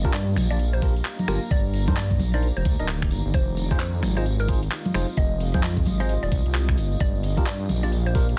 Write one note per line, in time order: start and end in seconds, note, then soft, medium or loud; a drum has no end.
0.00 3.30 A#3 medium
0.00 3.30 D4 medium
0.00 0.29 F4 medium
0.00 1.49 F4 medium
0.00 2.24 G4 medium
0.00 3.30 G4 medium
0.00 2.25 F5 medium
0.00 4.34 A#5 medium
0.04 0.38 G2 medium
0.04 0.12 D4 loud
0.04 0.12 F4 medium
0.04 0.12 G4 medium
0.04 0.12 A#4 loud
0.04 kick loud
0.04 tambourine soft
0.13 0.35 D5 loud
0.13 clap loud
0.13 tambourine medium
0.27 tambourine soft
0.36 1.02 A#1 medium
0.36 finger snap soft
0.36 open hi-hat loud
0.36 tambourine loud
0.36 high conga medium
0.51 0.58 D4 medium
0.51 0.58 F4 medium
0.51 0.58 G4 medium
0.51 0.63 D5 medium
0.51 0.58 D5 medium
0.51 closed hi-hat medium
0.59 closed hi-hat medium
0.59 tambourine medium
0.73 0.86 C5 medium
0.73 closed hi-hat soft
0.73 tambourine soft
0.82 0.94 D4 medium
0.82 0.94 F4 medium
0.82 0.94 G4 medium
0.82 0.94 A#4 medium
0.82 kick loud
0.82 open hi-hat loud
0.82 tambourine medium
0.96 closed hi-hat medium
0.96 tambourine soft
1.05 clap loud
1.05 tambourine medium
1.19 closed hi-hat soft
1.19 tambourine soft
1.19 high conga medium
1.28 1.39 G1 loud
1.28 1.39 D4 medium
1.28 1.39 F4 medium
1.28 1.39 G4 medium
1.28 1.39 A#4 medium
1.28 finger snap medium
1.28 open hi-hat loud
1.28 tambourine loud
1.42 tambourine soft
1.51 1.89 G1 medium
1.51 4.72 D#3 medium
1.51 6.74 D#4 medium
1.51 1.81 D5 loud
1.51 kick loud
1.51 closed hi-hat medium
1.51 tambourine medium
1.65 tambourine soft
1.74 open hi-hat loud
1.74 tambourine loud
1.88 2.21 G2 medium
1.88 1.95 D4 medium
1.88 1.95 D#4 medium
1.88 1.95 A#4 medium
1.88 1.95 C5 loud
1.88 kick loud
1.88 tambourine soft
1.88 high conga medium
1.96 2.19 D5 loud
1.96 clap loud
1.96 tambourine medium
2.11 kick medium
2.11 tambourine soft
2.19 2.51 A#1 medium
2.19 open hi-hat medium
2.19 tambourine medium
2.19 high conga medium
2.34 2.47 D4 medium
2.34 2.47 D#4 medium
2.34 2.47 A#4 medium
2.34 2.47 C5 medium
2.34 2.46 D5 medium
2.34 closed hi-hat medium
2.34 tambourine soft
2.42 closed hi-hat medium
2.42 tambourine medium
2.56 2.63 F1 medium
2.56 2.69 C5 medium
2.56 closed hi-hat soft
2.56 tambourine soft
2.65 2.76 D2 loud
2.65 kick loud
2.65 open hi-hat loud
2.65 tambourine loud
2.79 3.13 D1 medium
2.79 2.87 D4 medium
2.79 2.87 D#4 medium
2.79 2.87 A#4 medium
2.79 2.87 D#5 medium
2.79 closed hi-hat medium
2.79 tambourine soft
2.88 clap loud
2.88 tambourine medium
3.02 finger snap soft
3.02 kick medium
3.02 closed hi-hat soft
3.02 tambourine soft
3.10 3.22 G1 medium
3.10 open hi-hat loud
3.10 tambourine medium
3.25 3.32 G1 medium
3.25 tambourine soft
3.34 3.72 F1 medium
3.34 6.74 G#3 medium
3.34 6.74 C4 medium
3.34 7.62 F4 medium
3.34 8.39 G4 medium
3.34 3.64 C5 medium
3.34 kick loud
3.34 closed hi-hat medium
3.34 tambourine medium
3.48 tambourine soft
3.57 open hi-hat loud
3.57 tambourine medium
3.71 4.04 F2 medium
3.71 3.78 D#4 medium
3.71 3.78 F4 medium
3.71 3.78 G#4 medium
3.71 3.78 C5 loud
3.71 kick loud
3.75 6.78 D#5 medium
3.80 4.02 C5 medium
3.80 clap loud
3.80 tambourine medium
3.95 tambourine soft
4.03 4.68 G#1 medium
4.03 finger snap soft
4.03 open hi-hat loud
4.03 tambourine loud
4.03 high conga medium
4.17 4.24 D#4 medium
4.17 4.24 F4 medium
4.17 4.24 G#4 medium
4.17 4.29 C5 medium
4.17 4.24 D#5 medium
4.17 closed hi-hat medium
4.26 closed hi-hat medium
4.26 tambourine medium
4.39 4.52 A#4 medium
4.39 closed hi-hat soft
4.39 tambourine soft
4.49 4.60 D#4 medium
4.49 4.60 F4 medium
4.49 4.60 G#4 medium
4.49 4.60 C5 medium
4.49 kick loud
4.49 open hi-hat loud
4.49 tambourine medium
4.62 closed hi-hat medium
4.62 tambourine soft
4.71 clap loud
4.71 tambourine medium
4.86 closed hi-hat soft
4.86 tambourine soft
4.86 high conga medium
4.94 5.05 F1 loud
4.94 5.06 D#4 medium
4.94 5.06 F4 medium
4.94 5.06 G#4 medium
4.94 5.06 C5 loud
4.94 finger snap medium
4.94 open hi-hat loud
4.94 tambourine loud
5.09 tambourine soft
5.17 5.56 F1 medium
5.17 5.48 D#5 loud
5.17 kick loud
5.17 closed hi-hat medium
5.17 tambourine soft
5.32 tambourine soft
5.40 open hi-hat loud
5.40 tambourine medium
5.54 5.88 F2 medium
5.54 5.61 D#4 medium
5.54 5.61 F4 medium
5.54 5.61 G#4 medium
5.54 5.61 C5 loud
5.54 kick loud
5.54 tambourine soft
5.54 high conga medium
5.63 5.85 D#5 loud
5.63 clap loud
5.63 tambourine medium
5.77 kick medium
5.77 tambourine soft
5.85 6.18 G#1 medium
5.85 open hi-hat loud
5.85 tambourine medium
5.85 high conga medium
6.00 6.13 D#4 medium
6.00 6.13 F4 medium
6.00 6.13 G#4 medium
6.00 6.13 C5 medium
6.00 6.13 D#5 medium
6.00 closed hi-hat medium
6.00 tambourine soft
6.09 closed hi-hat medium
6.09 tambourine medium
6.23 6.30 D#1 medium
6.23 6.35 D5 medium
6.23 closed hi-hat soft
6.23 tambourine soft
6.32 6.42 C2 loud
6.32 kick loud
6.32 open hi-hat loud
6.32 tambourine medium
6.46 6.79 C2 medium
6.46 closed hi-hat medium
6.46 tambourine soft
6.55 clap loud
6.55 tambourine medium
6.69 finger snap soft
6.69 kick medium
6.69 closed hi-hat medium
6.69 tambourine soft
6.77 6.96 G1 medium
6.77 8.39 A#3 medium
6.77 8.39 D4 medium
6.77 8.39 F4 medium
6.77 8.39 G4 loud
6.77 open hi-hat loud
6.77 tambourine medium
6.92 tambourine soft
6.99 7.39 G1 medium
6.99 7.31 D5 loud
6.99 8.39 A#5 loud
6.99 kick loud
6.99 closed hi-hat medium
7.10 8.39 F5 medium
7.15 tambourine soft
7.23 open hi-hat loud
7.23 tambourine medium
7.37 7.70 G2 medium
7.37 7.45 D4 loud
7.37 7.45 F4 medium
7.37 7.45 G4 medium
7.37 7.44 A#4 loud
7.37 kick loud
7.37 tambourine soft
7.46 7.68 D5 loud
7.46 clap loud
7.46 tambourine medium
7.59 tambourine soft
7.69 8.34 A#1 medium
7.69 open hi-hat loud
7.69 tambourine medium
7.69 high conga medium
7.83 7.90 D4 medium
7.83 7.90 F4 medium
7.83 7.90 G4 medium
7.83 7.96 D5 medium
7.83 7.90 D5 medium
7.83 closed hi-hat medium
7.83 tambourine soft
7.92 closed hi-hat medium
7.92 tambourine medium
8.06 8.19 C5 medium
8.06 closed hi-hat soft
8.06 tambourine soft
8.15 8.26 D4 medium
8.15 8.26 F4 medium
8.15 8.26 G4 medium
8.15 8.26 A#4 medium
8.15 kick loud
8.15 open hi-hat loud
8.15 tambourine medium
8.29 closed hi-hat medium
8.29 tambourine soft